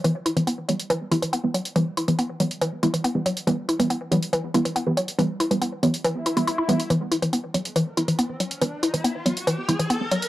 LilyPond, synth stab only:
\new Staff \with { instrumentName = "Synth stab" } { \clef bass \time 4/4 \key e \minor \tempo 4 = 140 <e g b>16 r8 <e g b>16 r8 <e g b>16 r8. <e g b>16 r8 <e g b>16 r8 | <e g b>16 r8 <e g b>16 r8 <e g b>16 r8. <e g b>16 r8 <e g b>16 r8 | <e g b>16 r8 <e g b>16 r8 <e g b>16 r8. <e g b>16 r8 <e g b>16 r8 | <e g b>16 r8 <e g b>16 r8 <e g b>16 r4 <e g b>16 r8 <e g b>16 r16 |
<e g b>16 r8 <e g b>16 r8 <e g b>16 r8. <e g b>16 r8 <e g b>16 r8 | <e g b>16 r8 <e g b>16 r8 <e g b>16 r8. <e g b>16 r8 <e g b>16 r8 | }